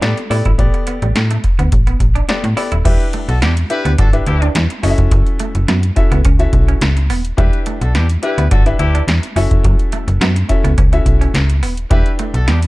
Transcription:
0.01 A2 B3 G4 A4 D5, muted clean electric guitar stroke, snare, closed hi-hat
0.17 closed hi-hat
0.30 A2 B3 E4 G4 A4 D5, open hi-hat
0.45 G#1 E4, kick, closed hi-hat
0.58 A1 B3 G4 A4 D5, kick, closed hi-hat
0.74 muted clean electric guitar stroke, closed hi-hat
0.87 B3, closed hi-hat
1.02 A1 G3, closed hi-hat
1.15 A2, snare, closed hi-hat
1.31 A3, closed hi-hat
1.44 muted clean electric guitar stroke, kick, closed hi-hat
1.59 D2 B3, closed hi-hat
1.72 A1, kick, closed hi-hat
1.87 B3, closed hi-hat
2.00 A1, muted clean electric guitar stroke, kick, closed hi-hat
2.15 D4, closed hi-hat
2.28 B3 G4 A4 D5, muted clean electric guitar stroke, snare, closed hi-hat
2.44 A2, closed hi-hat
2.56 B3 E4 G4 A4 D5, open hi-hat
2.72 D#1 E4, closed hi-hat
2.85 E1 G3 D4 E4 G4 B4 E5, kick, closed hi-hat, crash
3.00 closed hi-hat
3.13 A3, closed hi-hat
3.28 B1 D4 F#4 A4, muted clean electric guitar stroke, closed hi-hat
3.42 E2 B3 D4 E4 G4, snare, closed hi-hat
3.57 closed hi-hat
3.70 D4 E4 G4 B4 E5, muted clean electric guitar stroke, closed hi-hat
3.85 D2 B3, closed hi-hat
3.98 G1 D4 F#4 A4, kick, closed hi-hat
4.13 D4 E4 G4 B4 E5, muted clean electric guitar stroke, closed hi-hat
4.26 D2 D4 E4 G4, closed hi-hat
4.42 D4, closed hi-hat
4.55 E2, snare, closed hi-hat
4.70 closed hi-hat
4.83 F#1 C#4 E4 F#4 A4 D#5, open hi-hat
4.90 E5
4.98 F1, kick, closed hi-hat
5.11 F#1 F#3, kick, closed hi-hat
5.27 closed hi-hat
5.39 A3, closed hi-hat
5.55 F#1, muted clean electric guitar stroke, closed hi-hat
5.68 F#2 B3, snare, closed hi-hat
5.83 closed hi-hat
5.96 C#4 E4 F#4 A4 E5, muted clean electric guitar stroke, kick, closed hi-hat
6.11 C#2 B3, closed hi-hat
6.25 C#2 C#4, kick, closed hi-hat
6.39 C#4 E4 F#4 A4 E5, muted clean electric guitar stroke, closed hi-hat
6.53 B1, kick, closed hi-hat
6.68 C#4, closed hi-hat
6.81 C#2, snare, closed hi-hat
6.97 closed hi-hat
7.10 D#1 B3, open hi-hat
7.25 closed hi-hat
7.37 E1 G3 D4 E4 G4 B4 E5, kick, closed hi-hat
7.53 closed hi-hat
7.66 A3, closed hi-hat
7.81 B1 D4 F#4 A4, muted clean electric guitar stroke, closed hi-hat
7.95 E2 B3 D4 E4 G4, snare, closed hi-hat
8.10 closed hi-hat
8.22 D4 E4 G4 B4 E5, muted clean electric guitar stroke, closed hi-hat
8.38 D2 B3, closed hi-hat
8.51 G1 D4 F#4 A4, kick, closed hi-hat
8.66 D4 E4 G4 B4 E5, muted clean electric guitar stroke, closed hi-hat
8.79 D2 D4 E4 G4, closed hi-hat
8.95 D4, closed hi-hat
9.08 E2, snare, closed hi-hat
9.23 closed hi-hat
9.36 F#1 C#4 E4 F#4 A4 E5, open hi-hat
9.51 F1, kick, closed hi-hat
9.64 F#1 F#3, kick, closed hi-hat
9.79 closed hi-hat
9.92 A3, closed hi-hat
10.08 F#1, muted clean electric guitar stroke, closed hi-hat
10.21 F#2 B3, snare, closed hi-hat
10.36 closed hi-hat
10.49 C#4 E4 F#4 A4 E5, muted clean electric guitar stroke, kick, closed hi-hat
10.64 C#2 B3, closed hi-hat
10.78 C#2 C#4, kick, closed hi-hat
10.92 C#4 E4 F#4 A4 E5, muted clean electric guitar stroke, closed hi-hat
11.06 B1, kick, closed hi-hat
11.21 C#4, closed hi-hat
11.34 C#2, snare, closed hi-hat
11.50 closed hi-hat
11.62 D#1 B3, open hi-hat
11.77 closed hi-hat
11.90 E1 G3 D4 E4 G4 B4 E5, kick, closed hi-hat
12.06 closed hi-hat
12.19 A3, closed hi-hat
12.34 B1 D4 F#4 A4, muted clean electric guitar stroke, closed hi-hat
12.47 E2 B3 D4 E4 G4, snare, closed hi-hat
12.62 closed hi-hat

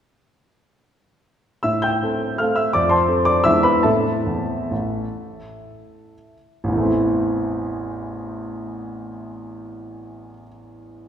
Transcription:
1.63 A2 E5 E6
1.82 G5 E6 G6
2.02 C4 A4
2.38 A3 C4 A4 F5 F6
2.56 E5 E6
2.73 F2 D5 D6
2.89 C5 A5 C6
3.08 C4 A4
3.25 D5 D6
3.44 E2 G#3 D4 E4 E5 E6
3.63 B4 B5
3.83 A2 C4 E4 A4 E5 A5
4.26 E2
4.71 A1
6.64 A1
6.68 E2
6.72 E3
6.77 A3
6.81 C4
6.85 E4

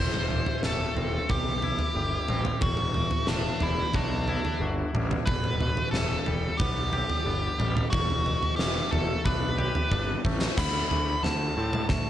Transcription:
Already playing: E2
0.00 E1 C5
0.14 mid tom
0.30 E3, floor tom
0.46 floor tom
0.63 E1 A3 A4, snare
0.96 E1 C4, floor tom
1.29 B1 G4, kick, floor tom
1.62 E4, floor tom
1.79 floor tom
1.95 G1 G4
2.28 A1 C4, mid tom
2.45 floor tom, mid tom
2.61 E1 E2 F#4, kick, floor tom
2.77 mid tom
2.94 E3, floor tom
3.11 floor tom
3.27 E1 A3 D4, snare
3.60 E1 D4 E4, floor tom
3.94 B1 D4 F#4, kick, floor tom
4.28 E4, floor tom
4.45 floor tom
4.60 G1 F#4
4.93 A1 D4, mid tom
5.11 floor tom, mid tom
5.25 E1 E2 B4, kick, floor tom
5.44 mid tom
5.61 B2, floor tom
5.77 floor tom
5.91 E1 E3 A4, snare
6.26 E1 G3, floor tom
6.57 B1 B3 G4, kick, floor tom
6.93 G4, floor tom
7.10 floor tom
7.26 G1 B3
7.58 A1 G3, mid tom
7.77 floor tom, mid tom
7.90 E1 E2 F#4, kick, floor tom
8.10 floor tom
8.26 B2, floor tom
8.43 floor tom
8.56 E1 E3 G4, snare
8.91 E1 A3 A4, floor tom
9.25 B1 D4 B4, kick, floor tom
9.58 G4, floor tom
9.75 floor tom
9.91 G1 D4, kick
10.25 A1 A3, kick
10.41 snare
10.57 D2 D3 B5, kick, snare, floor tom, crash
10.90 D2 A3, floor tom
11.23 D2 D3 A5, snare, floor tom
11.57 A2 C4
11.73 mid tom
11.89 D2 A3 A5, kick, snare, floor tom

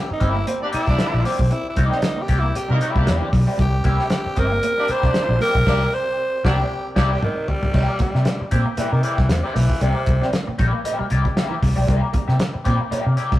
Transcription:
Already playing: C4 G4 A#4 D5
0.08 muted clean electric guitar stroke, muted fingered electric bass stroke
0.13 D#4
0.20 G1 A#3 C4 E4 G4 E5, kick, closed hi-hat
0.30 E4
0.35 A#3, muted clean electric guitar stroke
0.47 A#3 C4, muted clean electric guitar stroke, closed hi-hat
0.61 A#3 D4 G4 D5, muted clean electric guitar stroke
0.71 A#3 E4 G4 D5, muted fingered electric bass stroke, closed hi-hat
0.87 C2 G3 A#3 D4 G4 D5, muted clean electric guitar stroke, kick, snare
0.99 muted clean electric guitar stroke, muted fingered electric bass stroke, snare, closed hi-hat
1.14 A#1
1.24 A#3 C4 E4 G4 D5, snare, open hi-hat
1.39 B1, muted clean electric guitar stroke, kick
1.50 C4 E4, closed hi-hat
1.69 E4
1.76 C2 A#3 E4 G4 D5, muted clean electric guitar stroke, kick, closed hi-hat
1.86 D#4
1.90 C4, snare
2.02 muted clean electric guitar stroke, snare, closed hi-hat
2.16 A#3, muted clean electric guitar stroke
2.22 G4
2.28 C2 A#3 E4 G4 D5, muted clean electric guitar stroke, kick, closed hi-hat
2.39 A#3 E4
2.43 muted clean electric guitar stroke
2.55 G4, muted clean electric guitar stroke, muted fingered electric bass stroke, closed hi-hat
2.69 C3 G3 A#3 E4 A#4, muted clean electric guitar stroke
2.73 D#4
2.80 A#3 E4 G4 D5, muted clean electric guitar stroke, closed hi-hat
2.91 G3 E4
2.95 C2 A#3 D4 G4 D5, muted clean electric guitar stroke, kick
3.07 E2 A#3 E4 G4 D5, snare, closed hi-hat
3.21 E3
3.33 B1, muted clean electric guitar stroke, kick, snare, open hi-hat
3.47 G3 A#3 E4 G4 D5
3.58 C2 G3 G4, kick, closed hi-hat
3.84 C2 A#3 E4 G4 E5, kick, closed hi-hat
3.99 muted clean electric guitar stroke, snare
4.10 muted clean electric guitar stroke, snare, closed hi-hat
4.26 muted clean electric guitar stroke, muted fingered electric bass stroke
4.36 G1 A#3 C4 E4 G4 A#4 E5, kick, closed hi-hat
4.52 A#3, muted clean electric guitar stroke
4.63 A#3, muted clean electric guitar stroke, closed hi-hat
4.77 A#3 D4 G4 D5, muted clean electric guitar stroke
4.88 A#3 E4 G4 C5 D5, muted fingered electric bass stroke, closed hi-hat
5.03 C2 G3 A#3 D4 G4 D5, muted clean electric guitar stroke, kick, snare
5.14 muted fingered electric bass stroke, muted clean electric guitar stroke, snare, closed hi-hat
5.29 A#1
5.40 A#3 E4 G4 A#4 D5, snare, open hi-hat
5.55 B1, muted clean electric guitar stroke, kick
5.65 C2 A#3 D4 E4 G4 D5, kick, snare, crash
5.94 C5
6.44 C2 A#3 D4 E4 G4 D5, kick, snare
6.96 C2 A#3 D4 E4 G4 D5, kick, snare, crash
7.12 G4
7.23 D#3, mid tom
7.48 G3, floor tom
7.63 floor tom
7.73 C2 G3 A#3 E4 G4 D5, kick, crash
7.89 muted clean electric guitar stroke
7.99 G3 A#3, muted fingered electric bass stroke, muted clean electric guitar stroke, kick, closed hi-hat
8.14 C3 A#3 E4 G4 E5, muted clean electric guitar stroke, snare
8.25 muted clean electric guitar stroke, snare, closed hi-hat
8.40 muted clean electric guitar stroke, muted fingered electric bass stroke
8.51 A#2 A#3 C4 E4 G4 D5, kick, closed hi-hat
8.66 A#3, muted clean electric guitar stroke
8.77 E3 A#3 E4 G4 D5, muted fingered electric bass stroke, closed hi-hat
8.92 C3 D#3, muted clean electric guitar stroke
9.03 E3 A#3 E4 G4 D5, closed hi-hat
9.18 C2 G3, muted clean electric guitar stroke, kick, snare
9.29 E2 C3, muted clean electric guitar stroke, snare, closed hi-hat
9.43 C3 A#3 E4 G4 D5
9.55 B1 E3 A#3, muted clean electric guitar stroke, snare, open hi-hat
9.70 muted clean electric guitar stroke, kick
9.81 C2 C3 A#3 C4 E4 G4 D5, closed hi-hat
9.95 muted clean electric guitar stroke
10.06 C2, muted clean electric guitar stroke, kick, closed hi-hat
10.21 A#3 C4 E4 G4 D5, snare
10.32 muted clean electric guitar stroke, snare, closed hi-hat
10.47 A#3, muted clean electric guitar stroke, muted fingered electric bass stroke
10.58 A#1 A#3 E4 G4 D5, muted clean electric guitar stroke, kick, closed hi-hat
10.73 A#3, muted clean electric guitar stroke
10.84 A#3 E4 G4 E5, closed hi-hat
10.99 G3, muted clean electric guitar stroke, muted fingered electric bass stroke
11.10 C2 A#3 E4 G4 D5, muted clean electric guitar stroke, closed hi-hat
11.25 G3, muted clean electric guitar stroke, kick
11.36 A#3 E4 G4 E5, snare, closed hi-hat
11.50 E3
11.62 C2, muted clean electric guitar stroke, kick, snare, open hi-hat
11.76 B1 G3 A#3 E4 G4 D5
11.87 C2 G3 A#3 E4 G4 D5, kick, closed hi-hat
12.02 muted clean electric guitar stroke
12.13 A#3, muted clean electric guitar stroke, muted fingered electric bass stroke, kick, closed hi-hat
12.28 C3 A#3 E4 G4 E5, muted clean electric guitar stroke, snare
12.39 muted clean electric guitar stroke, snare, closed hi-hat
12.53 muted clean electric guitar stroke, muted fingered electric bass stroke
12.64 A#2 A#3 C4 E4 G4 D5, kick, closed hi-hat
12.80 A#3, muted clean electric guitar stroke
12.91 A#3 E4 G4 D5, muted fingered electric bass stroke, closed hi-hat
13.06 C3, muted clean electric guitar stroke
13.17 A#3 E4 G4 D5, closed hi-hat
13.31 C2 G3, muted clean electric guitar stroke, kick, snare

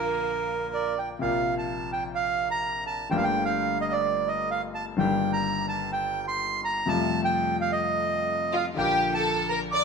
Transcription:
Already playing: A#1 A#2 D3 F3 A#3 F4 A#4
0.74 D5
0.98 G5
1.19 A#1 A#2 C3 F3 A#3 F5
1.23 F4
1.58 A5
1.93 G5
2.15 F5
2.51 A#5
2.87 A5
3.09 G1 G2 D3 A3 A#3 G4 G5
3.17 F5
3.24 G5
3.45 F5
3.81 D#5
3.92 D5
4.28 D#5
4.51 F5
4.75 A5
4.96 G1 G2 D#3 G3 A#3 G5
5.01 G4
5.33 A#5
5.69 A5
5.93 G5
6.28 C6
6.65 A#5
6.86 F2 C3 F3 G3 A3 F4 A5
7.25 G5
7.61 F5
7.72 D#5
8.53 F4 F5
8.74 A#1 A#2 D3 F3 A#3 G4 G5
8.78 F4
9.13 A4 A5
9.49 A#4 A#5
9.72 D5 D6

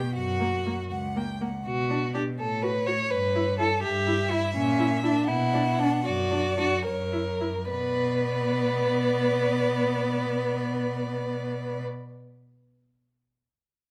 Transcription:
Already playing: G5
0.15 F#2 F#4 F#5
0.40 A#3
0.66 A#3
0.91 C#2 F#5
1.16 A#3 G5
1.41 A#3 F#5
1.66 B2 F#4
1.90 D4
2.14 D4 G4
2.38 A2 A4 C#5
2.63 F#4 B4
2.87 F#4 C#5
3.10 G2 B4
3.35 E4
3.59 E4 A4
3.83 G2 G4 E5
4.07 E4
4.31 E4
4.55 A#2 C#4
4.78 E4
5.03 D4 E4
5.28 B2 E4 F#5
5.54 D4
5.79 D4
6.05 F#2 F#4 D5
6.31 D4
6.57 D4 F#4
6.84 F#2 A#4 C#5
7.12 E4
7.41 E4
7.69 B2 B3 B4 D5

